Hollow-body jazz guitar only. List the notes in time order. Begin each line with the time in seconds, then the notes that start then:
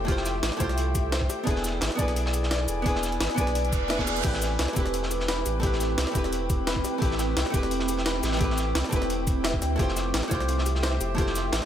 0.05 A3 E4 F4
0.10 G4 C5
0.57 A3 E4 F4
0.62 G4 C5
1.44 B3 D4 E4
1.49 G#4 B4
1.95 B3 D4 E4
2.01 G#4 B4
2.82 B3 D4 E4
2.87 G#4 B4
3.34 B3 D4 E4
3.39 G#4 B4
3.88 B3 D4 E4 B4
3.97 B3 D4 E4 G#4 B4
4.21 A3 C4 E4
4.26 G4 B4
4.73 A3 C4 E4
4.78 G4 B4
5.60 A3 C4 E4
5.65 G4 B4
6.12 A3 C4 E4
6.17 G4 B4
6.98 A3 C4 E4
7.03 G4 B4
7.50 A3 C4 E4
7.55 G4 B4
8.37 A3 C4 E4
8.42 G4 B4
8.89 A3 C4 E4
8.94 G4 B4
9.76 A3 E4 F4
9.81 G4 C5
10.28 A3 E4 F4
10.33 G4 C5
11.15 A3 E4 F4
11.20 G4 C5